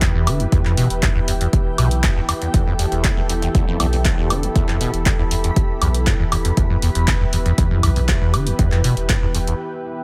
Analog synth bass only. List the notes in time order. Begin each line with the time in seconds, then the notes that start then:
0.15 E1
0.52 E1
0.90 E1
1.16 E1
1.53 E1
1.78 B1
2.16 D1
2.54 E1
2.92 E1
3.17 E1
3.55 E1
3.80 B1
4.18 E1
4.56 E1
4.94 E1
5.19 E1
5.56 E1
5.82 B1
6.20 E1
6.57 E1
6.95 E1
7.21 E1
7.58 E1
7.83 B1
8.21 E1
8.59 E1
8.97 E1
9.22 E1